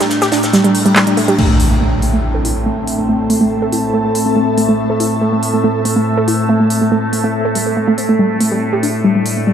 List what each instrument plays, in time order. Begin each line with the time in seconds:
Already playing: synth drone A2 A3, ambient pad D4 G5 A#5
0.00 synth arpeggio sound G3, snare, closed hi-hat, shaker
0.10 snare, closed hi-hat, shaker
0.22 synth arpeggio sound G4, snare, closed hi-hat, shaker
0.32 synth arpeggio sound D4, snare, open hi-hat, shaker
0.43 snare, closed hi-hat, shaker
0.53 synth arpeggio sound G3, snare, closed hi-hat, shaker
0.64 synth arpeggio sound G3, closed hi-hat
0.75 open hi-hat
0.86 synth arpeggio sound G3, closed hi-hat
0.96 synth arpeggio sound G3, snare, clap, closed hi-hat, shaker
1.07 synth arpeggio sound G3, closed hi-hat
1.17 synth arpeggio sound A3, open hi-hat
1.28 synth arpeggio sound G3, closed hi-hat
1.38 synth drone A2 A3, synth arpeggio sound A3, ambient pad C4, crash, impact
1.49 synth arpeggio sound A3
1.60 open hi-hat
1.71 synth arpeggio sound A3
1.81 synth arpeggio sound A3
1.88 ambient pad A4
2.02 synth arpeggio sound A3, open hi-hat
2.13 synth arpeggio sound A3
2.26 ambient pad E5
2.35 synth arpeggio sound A4
2.45 synth arpeggio sound E4, open hi-hat
2.66 synth arpeggio sound A3
2.76 synth arpeggio sound A3, ambient pad A5
2.87 open hi-hat
2.98 synth arpeggio sound A3
3.09 synth arpeggio sound A3
3.30 synth arpeggio sound A3, open hi-hat
3.41 synth arpeggio sound A3
3.62 synth arpeggio sound A4
3.72 synth arpeggio sound E4, open hi-hat
3.94 synth arpeggio sound A3
4.05 synth arpeggio sound A3
4.15 open hi-hat
4.26 synth arpeggio sound A3
4.36 synth arpeggio sound A3
4.58 synth arpeggio sound A3, open hi-hat
4.69 synth arpeggio sound A3
4.90 synth arpeggio sound A4
5.00 synth arpeggio sound E4, open hi-hat
5.21 synth arpeggio sound A3
5.32 synth arpeggio sound A3
5.43 open hi-hat
5.54 synth arpeggio sound A3
5.64 synth arpeggio sound A3
5.85 synth arpeggio sound A3, open hi-hat
5.96 synth arpeggio sound A3
6.17 synth arpeggio sound A4
6.28 synth arpeggio sound E4, open hi-hat
6.49 synth arpeggio sound A3
6.60 synth arpeggio sound A3
6.70 open hi-hat
6.81 synth arpeggio sound A3
6.92 synth arpeggio sound A3
7.13 synth arpeggio sound A3, open hi-hat
7.24 synth arpeggio sound A3
7.45 synth arpeggio sound A4
7.55 synth arpeggio sound G3, open hi-hat
7.66 synth arpeggio sound A4
7.77 synth arpeggio sound A3
7.88 synth arpeggio sound A3
7.98 synth arpeggio sound C4, open hi-hat
8.09 synth arpeggio sound A3
8.19 synth arpeggio sound G3, ambient pad D4
8.40 synth arpeggio sound A3, open hi-hat
8.51 synth arpeggio sound G3, ambient pad G5
8.73 synth arpeggio sound G4
8.83 synth arpeggio sound D4, open hi-hat
9.04 synth arpeggio sound G3
9.15 synth arpeggio sound G3
9.26 open hi-hat
9.37 synth arpeggio sound A3
9.47 synth arpeggio sound G3